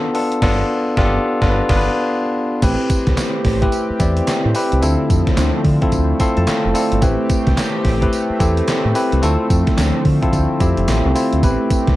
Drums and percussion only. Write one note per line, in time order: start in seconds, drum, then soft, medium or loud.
0.15 open hi-hat medium
0.32 closed hi-hat soft
0.42 kick loud
0.42 snare loud
0.42 crash medium
0.97 kick loud
0.97 snare loud
1.42 kick loud
1.42 snare loud
1.69 kick loud
1.69 snare loud
1.69 crash medium
2.62 kick loud
2.62 closed hi-hat medium
2.62 crash loud
2.62 tambourine medium
2.90 kick loud
2.90 closed hi-hat loud
2.90 tambourine medium
3.07 kick medium
3.07 snare medium
3.07 closed hi-hat soft
3.17 snare loud
3.17 clap medium
3.17 closed hi-hat medium
3.17 tambourine medium
3.45 kick medium
3.45 snare medium
3.45 open hi-hat medium
3.62 kick medium
3.62 closed hi-hat medium
3.72 closed hi-hat medium
3.72 tambourine medium
4.00 kick medium
4.00 closed hi-hat medium
4.00 tambourine medium
4.17 closed hi-hat medium
4.27 snare loud
4.27 clap medium
4.27 closed hi-hat medium
4.27 tambourine medium
4.55 open hi-hat medium
4.55 tambourine medium
4.72 closed hi-hat medium
4.82 closed hi-hat medium
4.82 tambourine medium
5.10 kick loud
5.10 closed hi-hat medium
5.10 tambourine medium
5.27 kick medium
5.27 snare medium
5.27 closed hi-hat medium
5.37 snare loud
5.37 clap medium
5.37 closed hi-hat medium
5.37 tambourine medium
5.65 kick medium
5.65 open hi-hat medium
5.82 kick medium
5.82 closed hi-hat medium
5.92 kick medium
5.92 closed hi-hat medium
5.92 tambourine medium
6.20 kick loud
6.20 closed hi-hat medium
6.20 tambourine medium
6.37 closed hi-hat medium
6.47 snare loud
6.47 clap medium
6.47 closed hi-hat medium
6.47 tambourine medium
6.75 open hi-hat medium
6.75 tambourine medium
6.92 closed hi-hat medium
7.02 kick loud
7.02 closed hi-hat loud
7.02 tambourine medium
7.30 kick loud
7.30 closed hi-hat medium
7.30 tambourine medium
7.47 kick medium
7.47 snare medium
7.47 closed hi-hat soft
7.57 snare loud
7.57 clap loud
7.57 closed hi-hat medium
7.57 tambourine loud
7.85 kick medium
7.85 snare medium
7.85 open hi-hat medium
8.02 kick medium
8.02 closed hi-hat medium
8.13 closed hi-hat medium
8.13 tambourine medium
8.40 kick medium
8.40 closed hi-hat medium
8.40 tambourine medium
8.57 closed hi-hat medium
8.68 snare loud
8.68 clap medium
8.68 closed hi-hat medium
8.68 tambourine medium
8.95 open hi-hat medium
8.95 tambourine medium
9.12 closed hi-hat medium
9.23 closed hi-hat medium
9.23 tambourine medium
9.50 kick loud
9.50 closed hi-hat loud
9.50 tambourine medium
9.67 kick medium
9.67 snare medium
9.67 closed hi-hat medium
9.78 snare loud
9.78 clap medium
9.78 closed hi-hat medium
9.78 tambourine medium
10.05 kick medium
10.05 open hi-hat medium
10.22 kick medium
10.22 closed hi-hat medium
10.33 kick medium
10.33 closed hi-hat medium
10.33 tambourine medium
10.60 kick medium
10.60 closed hi-hat medium
10.60 tambourine medium
10.77 closed hi-hat medium
10.88 snare loud
10.88 clap medium
10.88 closed hi-hat medium
10.88 tambourine medium
11.16 open hi-hat medium
11.16 tambourine medium
11.33 closed hi-hat soft
11.43 kick loud
11.43 closed hi-hat medium
11.43 tambourine medium
11.70 kick loud
11.70 closed hi-hat medium
11.70 tambourine medium
11.87 kick medium
11.87 snare medium
11.87 closed hi-hat soft